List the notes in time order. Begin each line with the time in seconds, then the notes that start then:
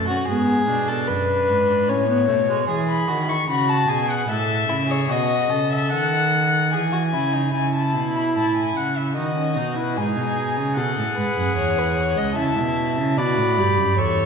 Already playing: F#2
0.08 C#4 F#4
0.28 G#2 B3 G#4
0.68 B2 D4
0.87 A4
1.08 F#2 B4
1.48 G#2
1.88 A2 C#4 C#5
2.08 B3
2.28 B2 A3
2.48 G#3
2.68 E3 G#4
2.88 B5
3.08 D#3 F#4
3.28 E4 C#6
3.48 C#3 F#4 B5
3.69 A5
3.88 B2 G#4 G#5
4.10 F#5
4.29 A2 A4 E5
4.69 C#3 E4
4.89 G#4 C#5
5.10 B2 F#4 D#5
5.50 C#3 A4
5.72 E5
5.91 D#3 F#5
6.72 E3 G#4 G#5
6.92 F#4
7.13 C#3 E4
7.33 D#4
7.54 C#3 E4 G#5
7.75 A5
7.95 B2
8.15 B5
8.36 A2 A5
8.57 G#5
8.76 C#3 F#5
8.97 E5
9.16 D#3 D#4 F#4 D#5
9.35 C#4
9.56 B2 D#4
9.76 E4 B4
9.96 G#2 D#4 G#4 G#5
10.16 B2
10.57 C#3
10.76 B2 G#4 A4 F#5
10.97 A2
11.17 G#2 B4
11.37 F#2
11.56 E2 C#5
11.78 B4
11.97 C#5
12.17 C#2 D#5
12.36 C#3 E4 E5 A5
12.57 B2
12.97 C#3
13.17 B2 F#4 D5 B5
13.37 A2
13.58 G2 G4
13.77 F#2
13.98 E2 A4 C#5 C#6